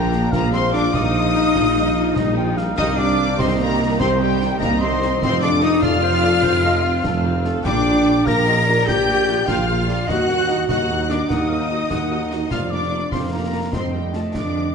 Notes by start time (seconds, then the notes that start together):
Already playing: A#1 D3 A#3 F4 A#4 G5 A#5
0.12 F3 D4, snare
0.31 A#1 F3 A#3 F4 A#4 F5 A#5, concert bass drum, snare
0.53 G3 C4 D#4 C5 C6, snare
0.73 F3 D4 F4 D5 D6, snare
0.94 A#1 G3 D#4 D#5 D#6, concert bass drum, snare
1.14 F3 F4
1.34 G3 D#4, snare
1.55 A#1 F3 F4, concert bass drum, snare
1.76 G3 D#4
1.95 F3 F4
2.16 A#1 G3 D#4 D#5, concert bass drum, snare
2.37 F3 F4 G5
2.57 G3 D#4 F5, snare
2.77 C2 D#3 D#4 G4 D#5 D#6, concert bass drum, snare
2.97 G3 D4 D#4 D5 D6
3.18 D#3 G4
3.38 C2 G3 C4 D#4 C5 D#5 C6, concert bass drum, snare
3.58 D#3 A#3 G4 A#4 A#5
3.81 G3 D#4
3.99 C2 D#3 C4 G4 C5 C6, concert bass drum, snare
4.19 G3 D#4 G4 G5
4.41 D#3 G4, snare
4.60 C2 G3 A#3 D#4 A#4 D#5 A#5, concert bass drum, snare
4.81 D#3 C4 G4 C5 C6
5.02 G3 D#4, snare
5.21 F1 F2 C4 F4 C5 C6, concert bass drum, snare
5.41 A3 D4 A4 D5 D6, snare
5.61 C4 D#4 F4 D#5 D#6, snare
5.82 F1 F2 A3 F4 A4 D5 F5 F6, concert bass drum, snare
6.03 C4 F4 C5
6.23 A3 A4 D5, snare
6.43 F1 F2 C4 F4 C5, concert bass drum, snare
6.64 A3 A4 D#5
6.84 C4 F4 F5
7.03 F1 F2 A3 A4, concert bass drum, snare
7.26 C4 F4
7.45 A3 A4, snare
7.64 A#1 A#2 A#3 D4 F4 D5 G5 D6, concert bass drum, snare, crash
7.86 A#3 F4
8.07 A#3 F4
8.25 A#1 A#3 F4 A#4 F5 A#5 A#6, concert bass drum, snare
8.47 A#3 F4 D#5
8.66 A#3 F4 D5
8.87 A#1 A#3 F4 G4 G5 G6, concert bass drum, snare
9.08 A#3 F4
9.28 A#3 F4, snare
9.46 A#1 A#3 F4 F5 G5 F6, concert bass drum, snare
9.67 A#3 F4 F5
9.87 A#3 F4 D5, snare
10.07 D#2 A#3 F#4 D#5 F#5 F#6, concert bass drum, snare
10.28 A#3 F#4 F#5, snare
10.48 A#3 F#4 D#5, snare
10.67 D#2 A#3 F#4 D#5 F#5 F#6, concert bass drum, snare
10.89 A#3 F#4
11.09 A#3 D4 F#4 D5 D6, snare
11.29 D#2 A#3 D#4 F#4 D#5 F#5 D#6, concert bass drum, snare
11.49 A#3 F#4 F5
11.69 A#3 F#4 D#5
11.90 D#2 A#3 F#4 F#5, concert bass drum, snare
12.10 A#3 F#4
12.31 A#3 F#4, snare
12.51 F1 F2 A#3 F4 D5 F5 F6, concert bass drum, snare
12.70 A#3 D4 F4 D5 D6
12.92 A#3 F4
13.11 F1 F2 A#3 C4 F4 C5 F5 C6, concert bass drum, snare
13.32 A#3 F4 A#4 A#5
13.53 A#3 F4
13.72 F1 F2 A3 C4 F4 C5 D#5 C6, concert bass drum, snare
13.93 G3 A3 F4 G4 G5
14.14 A3 F4 A4 A5, snare
14.34 F1 F2 D3 A3 D4 F4 D5 D6, concert bass drum, snare
14.55 A3 F4